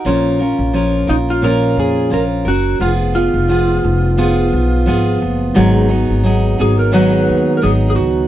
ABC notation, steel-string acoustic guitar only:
X:1
M:4/4
L:1/8
Q:"Swing 16ths" 1/4=87
K:Bbphr
V:1 name="Steel-string acoustic guitar"
[B,,F,DFB] [DFB] [F,DFB] [DFB] [B,,F,DFB]2 [F,DFB] [DB] | [F,CFA] [CFA] [F,CFA]2 [F,CFA]2 [F,CFA]2 | [A,,E,G,CEA] [G,CEA] [G,CEA] [G,CEA] [A,,E,G,CEA]2 [G,CEA]2 |]